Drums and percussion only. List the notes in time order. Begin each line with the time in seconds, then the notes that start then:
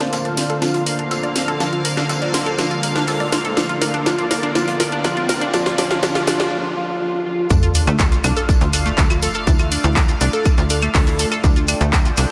0.00 snare, closed hi-hat
0.13 snare, closed hi-hat, tambourine
0.25 snare, closed hi-hat
0.37 snare, open hi-hat, tambourine
0.50 closed hi-hat
0.62 snare, closed hi-hat, tambourine
0.74 closed hi-hat
0.86 open hi-hat, tambourine
0.99 closed hi-hat
1.11 snare, closed hi-hat, tambourine
1.23 closed hi-hat
1.35 snare, open hi-hat, tambourine
1.48 closed hi-hat
1.60 snare, closed hi-hat, tambourine
1.73 closed hi-hat
1.85 open hi-hat, tambourine
1.97 snare, closed hi-hat
2.09 snare, closed hi-hat, tambourine
2.22 snare, closed hi-hat
2.34 snare, open hi-hat, tambourine
2.46 closed hi-hat
2.58 snare, closed hi-hat, tambourine
2.71 snare, closed hi-hat
2.83 open hi-hat, tambourine
2.96 snare, closed hi-hat
3.07 snare, closed hi-hat, open hi-hat
3.20 closed hi-hat
3.32 snare, open hi-hat, tambourine
3.45 snare, closed hi-hat
3.57 snare, closed hi-hat, tambourine
3.69 closed hi-hat
3.82 snare, open hi-hat, tambourine
3.94 closed hi-hat
4.06 snare, closed hi-hat, tambourine
4.18 snare, closed hi-hat
4.31 snare, open hi-hat, tambourine
4.43 closed hi-hat
4.55 snare, closed hi-hat, tambourine
4.68 closed hi-hat
4.80 snare, open hi-hat, tambourine
4.92 closed hi-hat
5.04 snare, closed hi-hat, tambourine
5.17 closed hi-hat
5.29 snare, open hi-hat, tambourine
5.41 closed hi-hat
5.53 snare, closed hi-hat, tambourine
5.66 snare, closed hi-hat
5.78 snare, open hi-hat, tambourine
5.91 snare, closed hi-hat
6.03 snare, closed hi-hat, tambourine
6.15 snare, closed hi-hat
6.27 snare, open hi-hat, tambourine
6.40 snare, closed hi-hat
7.50 kick, closed hi-hat, tambourine, shekere
7.63 closed hi-hat, shekere
7.75 open hi-hat, tambourine, shekere
7.87 closed hi-hat, claves, shekere
7.99 kick, snare, clap, closed hi-hat, tambourine, shekere
8.12 snare, closed hi-hat, shekere
8.24 open hi-hat, tambourine, claves, shekere
8.37 closed hi-hat, shekere
8.49 kick, closed hi-hat, tambourine, shekere
8.61 closed hi-hat, shekere
8.73 open hi-hat, tambourine, claves, shekere
8.86 closed hi-hat, shekere
8.98 kick, snare, clap, closed hi-hat, tambourine, shekere
9.10 closed hi-hat, claves, shekere
9.22 open hi-hat, tambourine, shekere
9.34 closed hi-hat, shekere
9.47 kick, closed hi-hat, tambourine, shekere
9.59 closed hi-hat, claves, shekere
9.72 open hi-hat, tambourine, shekere
9.84 closed hi-hat, shekere
9.96 kick, snare, clap, closed hi-hat, tambourine, claves, shekere
10.08 snare, closed hi-hat, shekere
10.21 open hi-hat, tambourine, shekere
10.33 closed hi-hat, shekere
10.45 kick, closed hi-hat, tambourine, claves, shekere
10.58 snare, closed hi-hat, shekere
10.70 open hi-hat, tambourine, shekere
10.82 closed hi-hat, claves, shekere
10.94 kick, snare, clap, closed hi-hat, open hi-hat, shekere
11.07 closed hi-hat, shekere
11.19 snare, open hi-hat, tambourine, shekere
11.32 snare, closed hi-hat, claves, shekere
11.43 kick, closed hi-hat, tambourine, shekere
11.56 closed hi-hat, shekere
11.68 open hi-hat, tambourine, claves, shekere
11.81 closed hi-hat, shekere
11.93 kick, snare, clap, closed hi-hat, tambourine, shekere
12.05 snare, closed hi-hat, shekere
12.17 open hi-hat, tambourine, claves, shekere